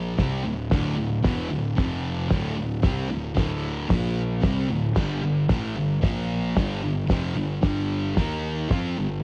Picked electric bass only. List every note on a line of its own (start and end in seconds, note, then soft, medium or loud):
0.00 0.14 A#1 loud
0.19 0.43 C2 loud
0.45 0.70 D1 medium
0.71 0.96 D1 medium
0.98 1.22 D1 medium
1.25 1.49 E1 loud
1.51 1.76 D1 medium
1.78 2.27 F1 loud
2.31 2.56 D1 medium
2.58 2.82 D1 medium
2.84 3.09 C2 loud
3.11 3.35 D1 medium
3.37 3.86 D1 loud
3.90 4.39 A#1 medium
4.43 4.68 C2 medium
4.69 4.94 D1 medium
4.96 5.21 G1 loud
5.23 5.48 G1 medium
5.49 5.74 A1 medium
5.76 6.01 G1 medium
6.03 6.52 A#1 loud
6.57 6.81 G1 medium
6.83 7.08 G1 medium
7.10 7.35 F1 loud
7.37 7.62 G1 medium
7.64 8.13 G1 loud
8.17 8.67 D#2 loud
8.70 8.95 F2 medium
8.97 9.22 G1 medium